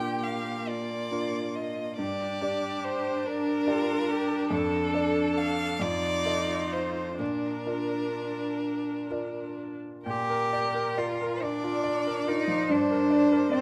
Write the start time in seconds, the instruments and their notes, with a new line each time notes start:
Already playing: grand piano A#2 D4 F4 A#4, viola A#3, cello G4, violin G5
0.23 violin F5
0.67 cello F4, violin D5
1.11 grand piano D4 F4 A#4
1.55 violin D#5
1.97 grand piano G2, viola D4, cello G4, violin D5
2.41 grand piano D4 G4 D5
2.84 violin C5
3.26 cello D4, violin A#4
3.67 grand piano D4 G4 D5, cello F4
4.11 cello G4
4.50 grand piano F2, violin A4
4.55 cello A4
4.94 grand piano D4 A4 D5
5.38 violin F5
5.80 grand piano F2, viola D#4, cello F4, violin D5
6.25 grand piano F4 A4 D#5
6.73 violin C5
7.18 grand piano A#2, viola D4, cello D4, violin A#4
7.67 grand piano F4 A#4 D5
9.10 grand piano F4 A#4 D5
10.06 grand piano A#2, cello G4, violin A#4
10.29 grand piano A#4
10.53 grand piano D5
10.74 grand piano A#4
10.97 cello F4, viola A#4, grand piano D5
11.21 grand piano A#4
11.42 cello D4, grand piano D5, violin D5
11.64 grand piano F4
11.84 grand piano D5
12.07 grand piano A#4
12.27 cello D#4, grand piano F4, viola A#4
12.48 grand piano F3
12.69 grand piano G2, cello D4, violin C5
12.91 grand piano A#4
13.10 grand piano D5
13.32 grand piano A#4
13.51 cello C4, grand piano D5, viola D5